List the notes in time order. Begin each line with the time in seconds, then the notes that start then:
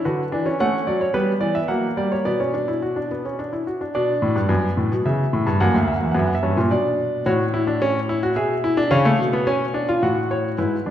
0.05 D3 F#4 B4
0.32 E3 D4
0.46 C#4
0.60 A3 C#4 F#5
0.87 F#3 D5
1.01 C#5
1.14 G3 B3 B4
1.41 E3 D5
1.55 E5
1.68 F#3 A#3 F#5
1.97 G3 D5
2.12 C#5
2.25 B2 B3 D5
2.40 C#4
2.54 D4
2.68 E4
2.82 F#4
2.96 D4
3.11 B3
3.25 C#4
3.39 D4
3.53 E4
3.67 F#4
3.81 D4
3.95 B2 D4 D5
4.22 A2
4.36 G2
4.49 F#2 B3
4.77 A2
4.92 B2
5.06 C#3 E5
5.33 A2
5.46 G2
5.60 F#2 A#3 F#5
5.74 D2
5.88 E5
5.96 F#5
6.01 E2 E5
6.11 F#2 B3 F#5
6.19 E5
6.27 F#5
6.35 E5
6.43 G2 C#4
6.57 A#2
6.71 B2 D4 D5
7.26 A2 F#4 C#5
7.54 E4
7.67 D4
7.82 C#4
8.09 E4
8.23 F#4
8.36 B2 G#4 E5
8.64 E4
8.77 D4
8.91 C#3 C#4 F5
9.05 A3
9.19 B2
9.33 B3
9.47 C#4 G#5
9.74 D4
9.89 F4
10.03 A2 F#4 F#5
10.31 C#5
10.58 G#2 E4 B4
10.86 F#2 D4